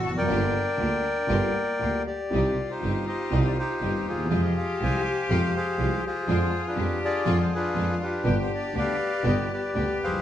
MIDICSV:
0, 0, Header, 1, 6, 480
1, 0, Start_track
1, 0, Key_signature, -3, "minor"
1, 0, Tempo, 504626
1, 275, Time_signature, 4, 2, 24, 8
1, 3158, Tempo, 494234
1, 9857, End_track
2, 0, Start_track
2, 0, Title_t, "Bandoneon"
2, 0, Program_c, 0, 23
2, 0, Note_on_c, 0, 66, 58
2, 0, Note_on_c, 0, 69, 65
2, 58, Note_on_c, 0, 81, 91
2, 107, Note_off_c, 0, 81, 0
2, 122, Note_off_c, 0, 66, 0
2, 124, Note_off_c, 0, 69, 0
2, 162, Note_on_c, 0, 70, 70
2, 162, Note_on_c, 0, 74, 77
2, 171, Note_on_c, 0, 79, 94
2, 1928, Note_off_c, 0, 70, 0
2, 1928, Note_off_c, 0, 74, 0
2, 1932, Note_off_c, 0, 79, 0
2, 1968, Note_on_c, 0, 74, 78
2, 1973, Note_on_c, 0, 67, 55
2, 2560, Note_off_c, 0, 67, 0
2, 2574, Note_on_c, 0, 67, 56
2, 2574, Note_on_c, 0, 72, 75
2, 2576, Note_on_c, 0, 63, 50
2, 2584, Note_off_c, 0, 74, 0
2, 2902, Note_off_c, 0, 72, 0
2, 2912, Note_off_c, 0, 67, 0
2, 2920, Note_on_c, 0, 75, 81
2, 2926, Note_on_c, 0, 67, 61
2, 2934, Note_on_c, 0, 72, 58
2, 3253, Note_off_c, 0, 75, 0
2, 3306, Note_on_c, 0, 74, 70
2, 3354, Note_off_c, 0, 74, 0
2, 3400, Note_off_c, 0, 72, 0
2, 3410, Note_off_c, 0, 63, 0
2, 3411, Note_off_c, 0, 67, 0
2, 3414, Note_on_c, 0, 72, 88
2, 3425, Note_on_c, 0, 63, 54
2, 3426, Note_on_c, 0, 67, 60
2, 3883, Note_off_c, 0, 72, 0
2, 3897, Note_on_c, 0, 72, 78
2, 3906, Note_on_c, 0, 68, 69
2, 3909, Note_on_c, 0, 65, 61
2, 4094, Note_off_c, 0, 63, 0
2, 4095, Note_off_c, 0, 67, 0
2, 4224, Note_off_c, 0, 72, 0
2, 4253, Note_on_c, 0, 75, 74
2, 4369, Note_off_c, 0, 75, 0
2, 4378, Note_on_c, 0, 77, 80
2, 4611, Note_off_c, 0, 77, 0
2, 4624, Note_on_c, 0, 80, 84
2, 4626, Note_on_c, 0, 77, 70
2, 4627, Note_on_c, 0, 72, 66
2, 4813, Note_off_c, 0, 68, 0
2, 4814, Note_off_c, 0, 65, 0
2, 5058, Note_off_c, 0, 80, 0
2, 5091, Note_off_c, 0, 72, 0
2, 5091, Note_on_c, 0, 79, 100
2, 5106, Note_on_c, 0, 72, 66
2, 5195, Note_off_c, 0, 79, 0
2, 5319, Note_off_c, 0, 77, 0
2, 5329, Note_off_c, 0, 72, 0
2, 5334, Note_on_c, 0, 77, 92
2, 5342, Note_on_c, 0, 68, 68
2, 5344, Note_on_c, 0, 72, 60
2, 5769, Note_off_c, 0, 77, 0
2, 5805, Note_off_c, 0, 72, 0
2, 5810, Note_off_c, 0, 68, 0
2, 5819, Note_on_c, 0, 72, 86
2, 5825, Note_on_c, 0, 68, 60
2, 5829, Note_on_c, 0, 65, 57
2, 6362, Note_off_c, 0, 72, 0
2, 6406, Note_off_c, 0, 65, 0
2, 6417, Note_on_c, 0, 71, 79
2, 6418, Note_on_c, 0, 62, 68
2, 6421, Note_on_c, 0, 65, 56
2, 6721, Note_off_c, 0, 68, 0
2, 6734, Note_off_c, 0, 71, 0
2, 6762, Note_off_c, 0, 65, 0
2, 6777, Note_on_c, 0, 65, 69
2, 6777, Note_on_c, 0, 68, 76
2, 6778, Note_on_c, 0, 74, 94
2, 7094, Note_off_c, 0, 74, 0
2, 7143, Note_on_c, 0, 72, 69
2, 7245, Note_off_c, 0, 72, 0
2, 7260, Note_off_c, 0, 65, 0
2, 7261, Note_off_c, 0, 62, 0
2, 7266, Note_on_c, 0, 71, 93
2, 7274, Note_on_c, 0, 65, 67
2, 7275, Note_on_c, 0, 62, 54
2, 7680, Note_off_c, 0, 68, 0
2, 7693, Note_off_c, 0, 71, 0
2, 7725, Note_off_c, 0, 62, 0
2, 7730, Note_on_c, 0, 71, 83
2, 7735, Note_on_c, 0, 67, 61
2, 7740, Note_on_c, 0, 62, 61
2, 7930, Note_off_c, 0, 65, 0
2, 8086, Note_off_c, 0, 71, 0
2, 8102, Note_on_c, 0, 72, 70
2, 8205, Note_off_c, 0, 72, 0
2, 8236, Note_on_c, 0, 74, 81
2, 8434, Note_off_c, 0, 74, 0
2, 8462, Note_on_c, 0, 74, 66
2, 8471, Note_on_c, 0, 71, 65
2, 8475, Note_on_c, 0, 77, 89
2, 8640, Note_off_c, 0, 67, 0
2, 8642, Note_off_c, 0, 62, 0
2, 8900, Note_off_c, 0, 77, 0
2, 8925, Note_off_c, 0, 71, 0
2, 8940, Note_on_c, 0, 71, 62
2, 8941, Note_on_c, 0, 75, 84
2, 8944, Note_on_c, 0, 67, 59
2, 9042, Note_off_c, 0, 75, 0
2, 9173, Note_off_c, 0, 67, 0
2, 9178, Note_off_c, 0, 71, 0
2, 9179, Note_off_c, 0, 74, 0
2, 9187, Note_on_c, 0, 67, 56
2, 9192, Note_on_c, 0, 71, 60
2, 9194, Note_on_c, 0, 74, 78
2, 9627, Note_off_c, 0, 74, 0
2, 9682, Note_on_c, 0, 77, 89
2, 9686, Note_on_c, 0, 72, 61
2, 9689, Note_on_c, 0, 68, 54
2, 9857, Note_off_c, 0, 67, 0
2, 9857, Note_off_c, 0, 68, 0
2, 9857, Note_off_c, 0, 71, 0
2, 9857, Note_off_c, 0, 72, 0
2, 9857, Note_off_c, 0, 77, 0
2, 9857, End_track
3, 0, Start_track
3, 0, Title_t, "Cello"
3, 0, Program_c, 1, 42
3, 0, Note_on_c, 1, 66, 109
3, 270, Note_on_c, 1, 62, 85
3, 284, Note_off_c, 1, 66, 0
3, 1219, Note_off_c, 1, 62, 0
3, 1225, Note_on_c, 1, 60, 73
3, 1458, Note_on_c, 1, 58, 67
3, 1472, Note_off_c, 1, 60, 0
3, 1955, Note_off_c, 1, 58, 0
3, 2193, Note_on_c, 1, 65, 90
3, 4106, Note_on_c, 1, 67, 100
3, 4121, Note_off_c, 1, 65, 0
3, 6024, Note_off_c, 1, 67, 0
3, 6034, Note_on_c, 1, 65, 94
3, 6501, Note_on_c, 1, 67, 96
3, 6516, Note_off_c, 1, 65, 0
3, 6995, Note_on_c, 1, 65, 95
3, 7009, Note_off_c, 1, 67, 0
3, 7941, Note_on_c, 1, 67, 91
3, 7956, Note_off_c, 1, 65, 0
3, 9394, Note_off_c, 1, 67, 0
3, 9399, Note_on_c, 1, 67, 83
3, 9857, Note_off_c, 1, 67, 0
3, 9857, End_track
4, 0, Start_track
4, 0, Title_t, "String section"
4, 0, Program_c, 2, 48
4, 268, Note_on_c, 2, 58, 66
4, 273, Note_on_c, 2, 65, 67
4, 275, Note_on_c, 2, 67, 70
4, 471, Note_off_c, 2, 58, 0
4, 474, Note_off_c, 2, 65, 0
4, 475, Note_off_c, 2, 67, 0
4, 752, Note_on_c, 2, 58, 45
4, 754, Note_on_c, 2, 67, 49
4, 755, Note_on_c, 2, 65, 46
4, 953, Note_off_c, 2, 58, 0
4, 954, Note_off_c, 2, 65, 0
4, 954, Note_off_c, 2, 67, 0
4, 1225, Note_on_c, 2, 58, 64
4, 1229, Note_on_c, 2, 65, 59
4, 1229, Note_on_c, 2, 67, 75
4, 1431, Note_off_c, 2, 58, 0
4, 1433, Note_off_c, 2, 65, 0
4, 1433, Note_off_c, 2, 67, 0
4, 1719, Note_on_c, 2, 58, 43
4, 1719, Note_on_c, 2, 65, 42
4, 1722, Note_on_c, 2, 67, 52
4, 1924, Note_off_c, 2, 58, 0
4, 1924, Note_off_c, 2, 65, 0
4, 1926, Note_off_c, 2, 67, 0
4, 2205, Note_on_c, 2, 60, 56
4, 2209, Note_on_c, 2, 63, 54
4, 2209, Note_on_c, 2, 67, 63
4, 2406, Note_off_c, 2, 60, 0
4, 2408, Note_off_c, 2, 63, 0
4, 2408, Note_off_c, 2, 67, 0
4, 2680, Note_on_c, 2, 60, 39
4, 2683, Note_on_c, 2, 63, 41
4, 2684, Note_on_c, 2, 67, 46
4, 2881, Note_off_c, 2, 60, 0
4, 2883, Note_off_c, 2, 63, 0
4, 2883, Note_off_c, 2, 67, 0
4, 3158, Note_on_c, 2, 60, 73
4, 3164, Note_on_c, 2, 63, 59
4, 3164, Note_on_c, 2, 67, 70
4, 3361, Note_off_c, 2, 60, 0
4, 3364, Note_off_c, 2, 63, 0
4, 3364, Note_off_c, 2, 67, 0
4, 3639, Note_on_c, 2, 60, 44
4, 3641, Note_on_c, 2, 63, 40
4, 3642, Note_on_c, 2, 67, 45
4, 3842, Note_off_c, 2, 60, 0
4, 3843, Note_off_c, 2, 63, 0
4, 3844, Note_off_c, 2, 67, 0
4, 4115, Note_on_c, 2, 56, 63
4, 4118, Note_on_c, 2, 60, 59
4, 4118, Note_on_c, 2, 65, 71
4, 4319, Note_off_c, 2, 56, 0
4, 4320, Note_off_c, 2, 60, 0
4, 4320, Note_off_c, 2, 65, 0
4, 4601, Note_on_c, 2, 56, 49
4, 4601, Note_on_c, 2, 60, 43
4, 4602, Note_on_c, 2, 65, 48
4, 4802, Note_off_c, 2, 56, 0
4, 4802, Note_off_c, 2, 60, 0
4, 4802, Note_off_c, 2, 65, 0
4, 5075, Note_on_c, 2, 56, 66
4, 5080, Note_on_c, 2, 60, 60
4, 5081, Note_on_c, 2, 65, 84
4, 5277, Note_off_c, 2, 56, 0
4, 5279, Note_off_c, 2, 60, 0
4, 5280, Note_off_c, 2, 65, 0
4, 5560, Note_on_c, 2, 60, 42
4, 5561, Note_on_c, 2, 56, 50
4, 5564, Note_on_c, 2, 65, 52
4, 5758, Note_off_c, 2, 56, 0
4, 5758, Note_off_c, 2, 60, 0
4, 5760, Note_off_c, 2, 65, 0
4, 6034, Note_on_c, 2, 56, 70
4, 6037, Note_on_c, 2, 62, 62
4, 6037, Note_on_c, 2, 65, 71
4, 6233, Note_off_c, 2, 56, 0
4, 6234, Note_off_c, 2, 62, 0
4, 6234, Note_off_c, 2, 65, 0
4, 6504, Note_on_c, 2, 56, 54
4, 6505, Note_on_c, 2, 62, 44
4, 6507, Note_on_c, 2, 65, 51
4, 6705, Note_off_c, 2, 56, 0
4, 6705, Note_off_c, 2, 62, 0
4, 6706, Note_off_c, 2, 65, 0
4, 6979, Note_on_c, 2, 56, 71
4, 6980, Note_on_c, 2, 62, 67
4, 6983, Note_on_c, 2, 65, 82
4, 7181, Note_off_c, 2, 56, 0
4, 7181, Note_off_c, 2, 62, 0
4, 7183, Note_off_c, 2, 65, 0
4, 7459, Note_on_c, 2, 62, 43
4, 7462, Note_on_c, 2, 56, 49
4, 7462, Note_on_c, 2, 65, 57
4, 7662, Note_off_c, 2, 62, 0
4, 7664, Note_off_c, 2, 56, 0
4, 7664, Note_off_c, 2, 65, 0
4, 7939, Note_on_c, 2, 62, 54
4, 7940, Note_on_c, 2, 59, 67
4, 7941, Note_on_c, 2, 67, 71
4, 8142, Note_off_c, 2, 59, 0
4, 8142, Note_off_c, 2, 62, 0
4, 8143, Note_off_c, 2, 67, 0
4, 8421, Note_on_c, 2, 59, 49
4, 8426, Note_on_c, 2, 62, 43
4, 8426, Note_on_c, 2, 67, 46
4, 8624, Note_off_c, 2, 59, 0
4, 8626, Note_off_c, 2, 62, 0
4, 8626, Note_off_c, 2, 67, 0
4, 8905, Note_on_c, 2, 59, 69
4, 8908, Note_on_c, 2, 62, 56
4, 8909, Note_on_c, 2, 67, 75
4, 9110, Note_off_c, 2, 59, 0
4, 9112, Note_off_c, 2, 62, 0
4, 9112, Note_off_c, 2, 67, 0
4, 9390, Note_on_c, 2, 59, 43
4, 9395, Note_on_c, 2, 67, 54
4, 9397, Note_on_c, 2, 62, 43
4, 9597, Note_off_c, 2, 59, 0
4, 9600, Note_off_c, 2, 62, 0
4, 9600, Note_off_c, 2, 67, 0
4, 9857, End_track
5, 0, Start_track
5, 0, Title_t, "Grand piano"
5, 0, Program_c, 3, 0
5, 84, Note_on_c, 3, 40, 48
5, 135, Note_on_c, 3, 41, 65
5, 149, Note_off_c, 3, 40, 0
5, 196, Note_on_c, 3, 42, 70
5, 205, Note_off_c, 3, 41, 0
5, 252, Note_on_c, 3, 43, 69
5, 257, Note_on_c, 3, 31, 70
5, 257, Note_on_c, 3, 55, 59
5, 258, Note_on_c, 3, 50, 61
5, 258, Note_on_c, 3, 58, 64
5, 261, Note_on_c, 3, 65, 70
5, 265, Note_off_c, 3, 42, 0
5, 463, Note_off_c, 3, 43, 0
5, 465, Note_off_c, 3, 31, 0
5, 466, Note_off_c, 3, 50, 0
5, 466, Note_off_c, 3, 55, 0
5, 466, Note_off_c, 3, 58, 0
5, 467, Note_off_c, 3, 65, 0
5, 735, Note_on_c, 3, 38, 48
5, 735, Note_on_c, 3, 50, 48
5, 736, Note_on_c, 3, 58, 41
5, 739, Note_on_c, 3, 65, 47
5, 741, Note_on_c, 3, 55, 35
5, 944, Note_off_c, 3, 38, 0
5, 945, Note_off_c, 3, 58, 0
5, 946, Note_off_c, 3, 50, 0
5, 946, Note_off_c, 3, 65, 0
5, 947, Note_off_c, 3, 55, 0
5, 1207, Note_on_c, 3, 50, 65
5, 1212, Note_on_c, 3, 55, 55
5, 1216, Note_on_c, 3, 43, 67
5, 1218, Note_on_c, 3, 58, 49
5, 1220, Note_on_c, 3, 31, 67
5, 1222, Note_on_c, 3, 65, 65
5, 1422, Note_off_c, 3, 50, 0
5, 1425, Note_off_c, 3, 55, 0
5, 1427, Note_off_c, 3, 43, 0
5, 1427, Note_off_c, 3, 58, 0
5, 1429, Note_off_c, 3, 31, 0
5, 1430, Note_off_c, 3, 65, 0
5, 1703, Note_on_c, 3, 50, 47
5, 1709, Note_on_c, 3, 55, 36
5, 1709, Note_on_c, 3, 58, 38
5, 1711, Note_on_c, 3, 38, 53
5, 1714, Note_on_c, 3, 65, 44
5, 1919, Note_off_c, 3, 55, 0
5, 1919, Note_off_c, 3, 58, 0
5, 1920, Note_off_c, 3, 38, 0
5, 1920, Note_off_c, 3, 50, 0
5, 1922, Note_off_c, 3, 65, 0
5, 2185, Note_on_c, 3, 55, 55
5, 2186, Note_on_c, 3, 48, 68
5, 2190, Note_on_c, 3, 67, 68
5, 2191, Note_on_c, 3, 36, 62
5, 2191, Note_on_c, 3, 51, 53
5, 2196, Note_on_c, 3, 60, 52
5, 2396, Note_off_c, 3, 55, 0
5, 2397, Note_off_c, 3, 48, 0
5, 2399, Note_off_c, 3, 36, 0
5, 2399, Note_off_c, 3, 51, 0
5, 2399, Note_off_c, 3, 67, 0
5, 2402, Note_off_c, 3, 60, 0
5, 2665, Note_on_c, 3, 31, 45
5, 2666, Note_on_c, 3, 51, 40
5, 2667, Note_on_c, 3, 55, 35
5, 2668, Note_on_c, 3, 43, 45
5, 2669, Note_on_c, 3, 67, 41
5, 2670, Note_on_c, 3, 60, 37
5, 2874, Note_off_c, 3, 31, 0
5, 2875, Note_off_c, 3, 51, 0
5, 2875, Note_off_c, 3, 55, 0
5, 2876, Note_off_c, 3, 43, 0
5, 2876, Note_off_c, 3, 60, 0
5, 2876, Note_off_c, 3, 67, 0
5, 3139, Note_on_c, 3, 48, 73
5, 3142, Note_on_c, 3, 60, 55
5, 3143, Note_on_c, 3, 51, 57
5, 3144, Note_on_c, 3, 55, 59
5, 3145, Note_on_c, 3, 36, 65
5, 3148, Note_on_c, 3, 67, 66
5, 3351, Note_off_c, 3, 48, 0
5, 3353, Note_off_c, 3, 51, 0
5, 3353, Note_off_c, 3, 60, 0
5, 3354, Note_off_c, 3, 36, 0
5, 3354, Note_off_c, 3, 55, 0
5, 3356, Note_off_c, 3, 67, 0
5, 3631, Note_on_c, 3, 51, 42
5, 3631, Note_on_c, 3, 60, 40
5, 3634, Note_on_c, 3, 55, 38
5, 3635, Note_on_c, 3, 31, 45
5, 3635, Note_on_c, 3, 43, 46
5, 3641, Note_on_c, 3, 67, 47
5, 3838, Note_off_c, 3, 51, 0
5, 3838, Note_off_c, 3, 60, 0
5, 3839, Note_off_c, 3, 55, 0
5, 3840, Note_off_c, 3, 31, 0
5, 3840, Note_off_c, 3, 43, 0
5, 3843, Note_off_c, 3, 67, 0
5, 3927, Note_on_c, 3, 38, 46
5, 3988, Note_on_c, 3, 39, 59
5, 3994, Note_off_c, 3, 38, 0
5, 4052, Note_on_c, 3, 40, 70
5, 4054, Note_off_c, 3, 39, 0
5, 4113, Note_on_c, 3, 48, 60
5, 4113, Note_on_c, 3, 53, 68
5, 4115, Note_on_c, 3, 56, 55
5, 4115, Note_on_c, 3, 65, 64
5, 4116, Note_off_c, 3, 40, 0
5, 4117, Note_on_c, 3, 41, 68
5, 4318, Note_off_c, 3, 48, 0
5, 4319, Note_off_c, 3, 56, 0
5, 4319, Note_off_c, 3, 65, 0
5, 4320, Note_off_c, 3, 41, 0
5, 4321, Note_off_c, 3, 53, 0
5, 4608, Note_on_c, 3, 48, 44
5, 4608, Note_on_c, 3, 65, 45
5, 4610, Note_on_c, 3, 36, 49
5, 4610, Note_on_c, 3, 53, 37
5, 4613, Note_on_c, 3, 56, 38
5, 4805, Note_off_c, 3, 65, 0
5, 4806, Note_off_c, 3, 36, 0
5, 4806, Note_off_c, 3, 53, 0
5, 4807, Note_off_c, 3, 48, 0
5, 4808, Note_off_c, 3, 56, 0
5, 5078, Note_on_c, 3, 48, 63
5, 5083, Note_on_c, 3, 41, 70
5, 5083, Note_on_c, 3, 56, 58
5, 5084, Note_on_c, 3, 53, 72
5, 5093, Note_on_c, 3, 65, 64
5, 5278, Note_off_c, 3, 48, 0
5, 5281, Note_off_c, 3, 41, 0
5, 5281, Note_off_c, 3, 56, 0
5, 5283, Note_off_c, 3, 53, 0
5, 5286, Note_off_c, 3, 65, 0
5, 5543, Note_on_c, 3, 48, 47
5, 5544, Note_on_c, 3, 36, 52
5, 5546, Note_on_c, 3, 53, 41
5, 5549, Note_on_c, 3, 56, 38
5, 5554, Note_on_c, 3, 65, 48
5, 5750, Note_off_c, 3, 36, 0
5, 5750, Note_off_c, 3, 48, 0
5, 5751, Note_off_c, 3, 53, 0
5, 5752, Note_off_c, 3, 56, 0
5, 5755, Note_off_c, 3, 65, 0
5, 6031, Note_on_c, 3, 53, 75
5, 6032, Note_on_c, 3, 50, 64
5, 6034, Note_on_c, 3, 41, 72
5, 6035, Note_on_c, 3, 65, 72
5, 6038, Note_on_c, 3, 56, 53
5, 6232, Note_off_c, 3, 41, 0
5, 6232, Note_off_c, 3, 50, 0
5, 6232, Note_off_c, 3, 53, 0
5, 6233, Note_off_c, 3, 65, 0
5, 6234, Note_off_c, 3, 56, 0
5, 6496, Note_on_c, 3, 56, 36
5, 6498, Note_on_c, 3, 50, 41
5, 6498, Note_on_c, 3, 53, 50
5, 6500, Note_on_c, 3, 41, 52
5, 6500, Note_on_c, 3, 65, 49
5, 6701, Note_off_c, 3, 56, 0
5, 6702, Note_off_c, 3, 50, 0
5, 6703, Note_off_c, 3, 41, 0
5, 6703, Note_off_c, 3, 53, 0
5, 6703, Note_off_c, 3, 65, 0
5, 6976, Note_on_c, 3, 50, 63
5, 6982, Note_on_c, 3, 41, 76
5, 6982, Note_on_c, 3, 53, 78
5, 6983, Note_on_c, 3, 65, 74
5, 6987, Note_on_c, 3, 56, 60
5, 7180, Note_off_c, 3, 50, 0
5, 7182, Note_off_c, 3, 41, 0
5, 7183, Note_off_c, 3, 53, 0
5, 7183, Note_off_c, 3, 65, 0
5, 7185, Note_off_c, 3, 56, 0
5, 7453, Note_on_c, 3, 56, 42
5, 7454, Note_on_c, 3, 53, 49
5, 7457, Note_on_c, 3, 50, 40
5, 7459, Note_on_c, 3, 41, 49
5, 7466, Note_on_c, 3, 65, 50
5, 7660, Note_off_c, 3, 56, 0
5, 7661, Note_off_c, 3, 53, 0
5, 7662, Note_off_c, 3, 50, 0
5, 7663, Note_off_c, 3, 41, 0
5, 7666, Note_off_c, 3, 65, 0
5, 7935, Note_on_c, 3, 43, 74
5, 7938, Note_on_c, 3, 50, 64
5, 7939, Note_on_c, 3, 59, 54
5, 7942, Note_on_c, 3, 55, 58
5, 7946, Note_on_c, 3, 31, 75
5, 7949, Note_on_c, 3, 67, 72
5, 8139, Note_off_c, 3, 43, 0
5, 8141, Note_off_c, 3, 50, 0
5, 8142, Note_off_c, 3, 59, 0
5, 8143, Note_off_c, 3, 55, 0
5, 8145, Note_off_c, 3, 31, 0
5, 8147, Note_off_c, 3, 67, 0
5, 8417, Note_on_c, 3, 50, 47
5, 8420, Note_on_c, 3, 55, 38
5, 8420, Note_on_c, 3, 67, 45
5, 8422, Note_on_c, 3, 59, 33
5, 8425, Note_on_c, 3, 38, 47
5, 8623, Note_off_c, 3, 50, 0
5, 8623, Note_off_c, 3, 55, 0
5, 8623, Note_off_c, 3, 67, 0
5, 8624, Note_off_c, 3, 59, 0
5, 8625, Note_off_c, 3, 38, 0
5, 8902, Note_on_c, 3, 50, 54
5, 8905, Note_on_c, 3, 31, 74
5, 8905, Note_on_c, 3, 59, 49
5, 8906, Note_on_c, 3, 55, 50
5, 8907, Note_on_c, 3, 43, 71
5, 8915, Note_on_c, 3, 67, 64
5, 9109, Note_off_c, 3, 50, 0
5, 9110, Note_off_c, 3, 31, 0
5, 9110, Note_off_c, 3, 59, 0
5, 9111, Note_off_c, 3, 43, 0
5, 9111, Note_off_c, 3, 55, 0
5, 9115, Note_off_c, 3, 67, 0
5, 9399, Note_on_c, 3, 50, 48
5, 9403, Note_on_c, 3, 55, 36
5, 9403, Note_on_c, 3, 59, 39
5, 9407, Note_on_c, 3, 38, 47
5, 9409, Note_on_c, 3, 67, 46
5, 9603, Note_off_c, 3, 55, 0
5, 9603, Note_off_c, 3, 59, 0
5, 9605, Note_off_c, 3, 38, 0
5, 9606, Note_off_c, 3, 67, 0
5, 9607, Note_off_c, 3, 50, 0
5, 9709, Note_on_c, 3, 29, 41
5, 9764, Note_on_c, 3, 30, 56
5, 9765, Note_off_c, 3, 29, 0
5, 9820, Note_on_c, 3, 31, 61
5, 9822, Note_off_c, 3, 30, 0
5, 9857, Note_off_c, 3, 31, 0
5, 9857, End_track
6, 0, Start_track
6, 0, Title_t, "Double bass"
6, 0, Program_c, 4, 43
6, 46, Note_on_c, 4, 29, 50
6, 267, Note_off_c, 4, 29, 0
6, 272, Note_on_c, 4, 31, 90
6, 473, Note_off_c, 4, 31, 0
6, 752, Note_on_c, 4, 38, 62
6, 953, Note_off_c, 4, 38, 0
6, 1228, Note_on_c, 4, 31, 84
6, 1433, Note_off_c, 4, 31, 0
6, 1722, Note_on_c, 4, 38, 48
6, 1926, Note_off_c, 4, 38, 0
6, 2207, Note_on_c, 4, 36, 79
6, 2407, Note_off_c, 4, 36, 0
6, 2688, Note_on_c, 4, 31, 57
6, 2885, Note_off_c, 4, 31, 0
6, 3157, Note_on_c, 4, 36, 85
6, 3360, Note_off_c, 4, 36, 0
6, 3634, Note_on_c, 4, 31, 52
6, 3839, Note_off_c, 4, 31, 0
6, 3878, Note_on_c, 4, 39, 46
6, 4108, Note_off_c, 4, 39, 0
6, 4114, Note_on_c, 4, 41, 85
6, 4318, Note_off_c, 4, 41, 0
6, 4601, Note_on_c, 4, 36, 60
6, 4801, Note_off_c, 4, 36, 0
6, 5075, Note_on_c, 4, 41, 83
6, 5277, Note_off_c, 4, 41, 0
6, 5551, Note_on_c, 4, 36, 59
6, 5753, Note_off_c, 4, 36, 0
6, 6028, Note_on_c, 4, 41, 87
6, 6230, Note_off_c, 4, 41, 0
6, 6507, Note_on_c, 4, 41, 64
6, 6706, Note_off_c, 4, 41, 0
6, 6986, Note_on_c, 4, 41, 87
6, 7184, Note_off_c, 4, 41, 0
6, 7464, Note_on_c, 4, 41, 54
6, 7665, Note_off_c, 4, 41, 0
6, 7945, Note_on_c, 4, 31, 89
6, 8144, Note_off_c, 4, 31, 0
6, 8421, Note_on_c, 4, 38, 60
6, 8623, Note_off_c, 4, 38, 0
6, 8909, Note_on_c, 4, 31, 84
6, 9112, Note_off_c, 4, 31, 0
6, 9402, Note_on_c, 4, 38, 53
6, 9603, Note_off_c, 4, 38, 0
6, 9644, Note_on_c, 4, 30, 43
6, 9857, Note_off_c, 4, 30, 0
6, 9857, End_track
0, 0, End_of_file